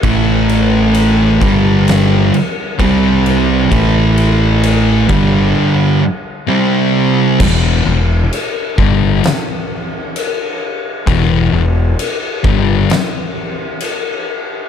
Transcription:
<<
  \new Staff \with { instrumentName = "Distorted electric guitar" } { \clef bass \time 4/4 \key e \minor \tempo 4 = 65 <a, e a>4. <g, d g>4 r8 <c g c'>4 | <a, e a>4. <g, d g>4 r8 <c g c'>4 | r1 | r1 | }
  \new Staff \with { instrumentName = "Distorted electric guitar" } { \clef bass \time 4/4 \key e \minor <a, e a>4. <g, d g>4 r8 <c g c'>4 | <a, e a>4. <g, d g>4 r8 <c g c'>4 | <e, b, e>8 <e, b,>8 r8 <g, d g>8 r2 | <e, b, e>8 <e, b,>8 r8 <g, d g>8 r2 | }
  \new Staff \with { instrumentName = "Fingered electric bass" } { \clef bass \time 4/4 \key e \minor a,,4. g,,4 r8 c,4 | a,,4. g,,8 r2 | e,,8 e,,8 r8 g,,8 r2 | e,,8 e,,8 r8 g,,8 r2 | }
  \new DrumStaff \with { instrumentName = "Drums" } \drummode { \time 4/4 <cymc bd>8 cymc8 cymc8 <cymc bd>8 <cymc sn>8 cymc8 <cymc bd>8 cymc8 | <cymc bd>8 cymc8 cymc8 <cymc bd>8 r4 r4 | <cymc bd>4 cymc8 bd8 <cymc sn>4 cymc4 | <cymc bd>4 cymc8 bd8 <cymc sn>4 cymc4 | }
>>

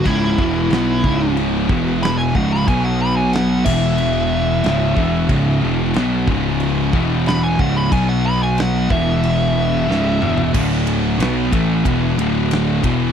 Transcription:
<<
  \new Staff \with { instrumentName = "Lead electric guitar" } { \time 4/4 \key d \lydian \tempo 4 = 92 e'2 r4 b''16 gis''16 fis''16 b''16 | gis''16 fis''16 b''16 gis''16 fis''8 e''2~ e''8~ | e''8 r2 r8 b''16 gis''16 fis''16 b''16 | gis''16 fis''16 b''16 gis''16 fis''8 e''2~ e''8 |
r1 | }
  \new Staff \with { instrumentName = "Distorted electric guitar" } { \clef bass \time 4/4 \key d \lydian <cis, gis, cis>8 <e, b, e>8 <b, fis b>8 <cis, gis, cis>4 <e, b, e>4 <cis, gis, cis>8 | <b, fis b>4. <e, b, e>4. <cis, gis, cis>8 <e, b, e>8 | <cis, gis, cis>8 <e, b, e>8 <b, fis b>8 <cis, gis, cis>4 <e, b, e>4 <cis, gis, cis>8 | <b, fis b>4. <e, b, e>4. <cis, gis, cis>8 <e, b, e>8 |
<d, a, d>4 <b, fis b>8 <a, e a>8 <e, b, e>8 <d, a, d>4 <e, b, e>8 | }
  \new Staff \with { instrumentName = "Distorted electric guitar" } { \clef bass \time 4/4 \key d \lydian <cis, gis, cis>8 <e, b, e>8 <b, fis b>8 <cis, gis, cis>4 <e, b, e>4 <cis, gis, cis>8 | <b, fis b>4. <e, b, e>4. <cis, gis, cis>8 <e, b, e>8 | <cis, gis, cis>8 <e, b, e>8 <b, fis b>8 <cis, gis, cis>4 <e, b, e>4 <cis, gis, cis>8 | <b, fis b>4. <e, b, e>4. <cis, gis, cis>8 <e, b, e>8 |
<d, a, d>4 <b, fis b>8 <a, e a>8 <e, b, e>8 <d, a, d>4 <e, b, e>8 | }
  \new Staff \with { instrumentName = "Distorted electric guitar" } { \clef bass \time 4/4 \key d \lydian <cis, gis, cis>8 <e, b, e>8 <b, fis b>8 <cis, gis, cis>4 <e, b, e>4 <cis, gis, cis>8 | <b, fis b>4. <e, b, e>4. <cis, gis, cis>8 <e, b, e>8 | <cis, gis, cis>8 <e, b, e>8 <b, fis b>8 <cis, gis, cis>4 <e, b, e>4 <cis, gis, cis>8 | <b, fis b>4. <e, b, e>4. <cis, gis, cis>8 <e, b, e>8 |
<d, a, d>4 <b, fis b>8 <a, e a>8 <e, b, e>8 <d, a, d>4 <e, b, e>8 | }
  \new Staff \with { instrumentName = "Picked electric bass" } { \clef bass \time 4/4 \key d \lydian cis,,8 e,,8 b,,8 cis,,4 e,,4 cis,,8 | b,,4. e,,4. cis,,8 e,,8 | cis,,8 e,,8 b,,8 cis,,4 e,,4 cis,,8 | b,,4. e,,4. cis,,8 e,,8 |
d,,4 b,,8 a,,8 e,,8 d,,4 e,,8 | }
  \new DrumStaff \with { instrumentName = "Drums" } \drummode { \time 4/4 <cymc bd>8 bd8 <cymc sn>8 bd8 cymc8 bd8 <cymc sn>8 bd16 sn16 | <cymc bd>4 <cymc sn>8 <cymc bd>8 cymc4 <cymc sn>8 bd8 | <cymc bd>4 <cymc sn>8 bd8 cymc8 bd8 <cymc sn>8 bd8 | <cymc bd>4 <cymc sn>8 bd8 cymc4 sn8 toml16 tomfh16 |
<cymc bd>8 cymr8 <cymr sn>8 <bd cymr>8 <bd cymr>8 cymr8 <cymr sn>8 <bd cymr>8 | }
>>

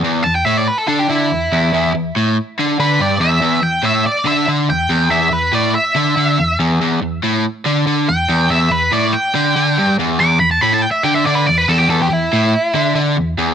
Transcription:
<<
  \new Staff \with { instrumentName = "Lead electric guitar" } { \time 4/4 \key e \minor \tempo 4 = 142 r8 a''16 g''16 e''16 d''16 b'16 a'16 a'16 g'16 e'4.~ | e'8 r2 b'8 d''8 e''8~ | e''8 g''8 e''8 d''8 e''8 r8 g''4 | e''8 b'8 d''8 e''2 r8 |
r2. g''4 | e''8 b'8 d''8 g''2 r8 | d'''8 b''16 a''16 b''16 a''16 g''16 e''16 g''16 e''16 d''16 b'16 d''16 b'16 a'16 g'16 | a'16 g'16 e'2 r4. | }
  \new Staff \with { instrumentName = "Overdriven electric guitar" } { \clef bass \time 4/4 \key e \minor e,8 e,8 a,8 r8 d8 d8 e,8 e,8 | e,8 e,8 a,8 r8 d8 d8 g,8 e,8 | e,8 e,8 a,8 r8 d8 d8 e,8 e,8 | e,8 e,8 a,8 r8 d8 d8 e,8 e,8 |
e,8 e,8 a,8 r8 d8 d8 e,8 e,8 | e,8 e,8 a,8 r8 d8 d8 g,8 e,8 | e,8 e,8 a,8 r8 d8 d8 e,8 e,8 | e,8 e,8 a,8 r8 d8 d8 e,8 e,8 | }
>>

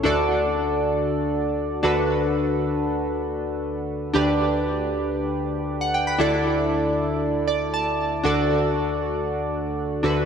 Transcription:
\new Staff \with { instrumentName = "Synth keys" } { \time 4/4 \key d \major \tempo 4 = 117 << { r1 | r1 | r2. r16 fis''16 g''16 b''16~ | b''16 r2 r16 d''8 a''4 |
r1 | } \\ { <d, d d' fis' a' d''>2.~ <d, d d' fis' a' d''>8 <d, d d' fis' a' b'>8~ | <d, d d' fis' a' b'>2.~ <d, d d' fis' a' b'>8 r8 | <d, d d' g' b' d''>1 | <d, d d' e' a' d''>1 |
<d, d d' fis' a' d''>2.~ <d, d d' fis' a' d''>8 <d, d d' fis' a' b'>8 | } >> }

